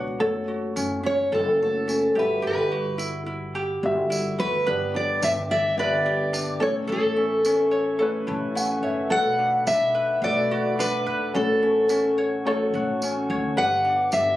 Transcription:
Already playing: upright bass C#2, grand piano B3 D4 C#5, ukulele D4 F#4 B4
0.19 upright bass F#1, grand piano A3 F#4 C#5, ukulele A4
0.48 ukulele F#4
0.76 upright bass F#1, ukulele C#4, tambourine
1.03 ukulele C#4, steel-string acoustic guitar C#5
1.32 upright bass F#1, ukulele A4, steel-string acoustic guitar A4
1.60 grand piano A3 F#4 C#5, steel-string acoustic guitar A4
1.88 ukulele C#4, tambourine
2.15 upright bass G1, grand piano G3 F#4 E5, ukulele G4, steel-string acoustic guitar B4
2.42 upright bass G1, ukulele G4
2.47 steel-string acoustic guitar B4
2.72 ukulele F#4
2.98 ukulele E4, tambourine
3.26 ukulele E4
3.55 ukulele G4
3.83 upright bass G1, grand piano G3 F#4 E5
4.10 ukulele E4, tambourine
4.38 upright bass D2, ukulele F#4, steel-string acoustic guitar B4
4.66 upright bass G1, grand piano B3 D4 G4 D5, ukulele B4, glass harmonica B4 D5 G5 D6
4.94 ukulele D4, steel-string acoustic guitar D5
5.22 upright bass G1, ukulele D4, steel-string acoustic guitar E5, tambourine
5.51 ukulele D5, steel-string acoustic guitar E5
5.77 upright bass G1, grand piano B3 D4 G4 D5, ukulele B4, steel-string acoustic guitar D5
6.06 ukulele G4
6.33 ukulele D4, tambourine
6.60 upright bass A1, grand piano A3 C#4 E4 C#5, glass harmonica A4 C#5 E5 C#6, ukulele A4, steel-string acoustic guitar C#5
6.87 upright bass A1, ukulele A4
6.92 steel-string acoustic guitar A4
7.16 ukulele C#4
7.45 ukulele C#4, tambourine
7.71 ukulele C#5
7.99 grand piano A3 C#4 E4 B4, ukulele A4
8.16 steel-string acoustic guitar G4
8.27 upright bass A1, ukulele E4, grand piano A5
8.55 ukulele C#4, grand piano F#5, tambourine
8.83 upright bass F#1, ukulele C#5, grand piano E5
9.10 upright bass B1, grand piano A3 D4 F#4 B4, ukulele A4, glass harmonica D5 F#5 B5, steel-string acoustic guitar F#5
9.39 ukulele D4
9.67 upright bass B1, ukulele D4, steel-string acoustic guitar E5, tambourine
9.95 ukulele B4
10.21 upright bass B1, grand piano A3 D4 F#4 B4, ukulele A4, steel-string acoustic guitar D5
10.51 ukulele F#4
10.79 ukulele D4, steel-string acoustic guitar B4, tambourine
11.06 upright bass E1, ukulele B4
11.33 upright bass A1, grand piano A3 C#4 F#4 C#5, ukulele A4, steel-string acoustic guitar A4, glass harmonica C#5 C#6
11.63 ukulele C#4
11.89 ukulele C#4, tambourine
12.18 ukulele C#5
12.45 grand piano A3 C#4 F#4 C#5, ukulele A4
12.74 upright bass A1, ukulele F#4
13.02 ukulele C#4, tambourine
13.30 upright bass D2, ukulele C#5
13.56 upright bass G1, grand piano B3 D4 G4 D5, glass harmonica G4 B4 D5 D6, ukulele B4, steel-string acoustic guitar F#5
13.85 ukulele D4
14.12 upright bass G1, ukulele D4, steel-string acoustic guitar E5, tambourine

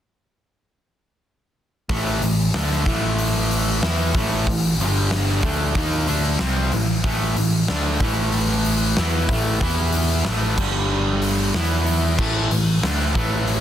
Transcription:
1.89 picked electric bass A1, distorted electric guitar A2 E3 A3, kick, open hi-hat
2.22 picked electric bass A1, distorted electric guitar A2 E3, open hi-hat
2.54 picked electric bass D2, distorted electric guitar D3 A3 D4, snare, open hi-hat
2.71 snare
2.86 picked electric bass A1, distorted electric guitar A2 E3 A3, kick, open hi-hat
3.18 open hi-hat
3.51 open hi-hat
3.82 picked electric bass E2, distorted electric guitar E3 B3 E4, snare, open hi-hat
4.14 picked electric bass A1, distorted electric guitar A2 E3 A3, kick, open hi-hat
4.47 picked electric bass A1, distorted electric guitar A2 E3, kick, open hi-hat
4.79 picked electric bass G1, distorted electric guitar G2 D3 G3, open hi-hat
5.11 snare, open hi-hat
5.27 snare
5.42 picked electric bass D2, distorted electric guitar D3 A3 D4, kick, open hi-hat
5.75 picked electric bass D#2, distorted electric guitar D#3 A#3 D#4, kick, open hi-hat
6.07 picked electric bass D2, distorted electric guitar D3 A3 D4, open hi-hat
6.39 picked electric bass C2, distorted electric guitar C3 G3 C4, snare, open hi-hat
6.72 picked electric bass A1, distorted electric guitar A2 E3, open hi-hat
7.04 picked electric bass A1, distorted electric guitar A2 E3 A3, kick, open hi-hat
7.36 picked electric bass A1, distorted electric guitar A2 E3, open hi-hat
7.68 picked electric bass D2, distorted electric guitar D3 A3 D4, snare, open hi-hat
8.00 picked electric bass A1, distorted electric guitar A2 E3 A3, kick, open hi-hat
8.32 open hi-hat
8.64 open hi-hat
8.97 picked electric bass E2, distorted electric guitar E3 B3 E4, snare, open hi-hat
9.29 picked electric bass A1, distorted electric guitar A2 E3 A3, kick, open hi-hat
9.61 picked electric bass E2, distorted electric guitar E3 B3 E4, kick, open hi-hat
9.92 open hi-hat
10.25 picked electric bass A1, distorted electric guitar A2 E3 A3, snare, open hi-hat
10.57 picked electric bass G1, distorted electric guitar G2 D3 G3, kick, crash
11.22 open hi-hat
11.54 picked electric bass E2, distorted electric guitar E3 B3 E4, snare, open hi-hat
11.86 open hi-hat
12.19 picked electric bass A1, distorted electric guitar A2 E3 A3, kick, crash
12.51 picked electric bass A1, distorted electric guitar A2 E3, open hi-hat
12.82 picked electric bass D2, distorted electric guitar D3 A3 D4, snare, open hi-hat
13.00 snare
13.15 picked electric bass A1, distorted electric guitar A2 E3 A3, kick, open hi-hat
13.48 open hi-hat

